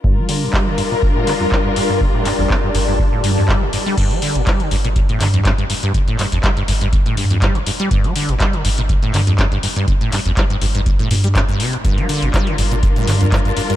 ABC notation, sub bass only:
X:1
M:4/4
L:1/16
Q:"Swing 16ths" 1/4=122
K:Gm
V:1 name="Sub bass" clef=bass
z16 | G,,, z2 G,,, z2 G,,,3 z G,,3 G,,, z2 | G,,, z2 G,,, z2 G,,,3 z G,,3 G,,, z2 | G,,, z2 G,,, z2 G,,,3 z G,,3 G,,, z2 |
G,,, z2 G,,, z2 G,,,3 z G,,3 G,,, z2 | G,,, z2 G,,, z2 G,,,3 z G,,3 G,,, z2 | G,,, z2 G,,, z2 G,,,3 z G,,3 G,,, z2 |]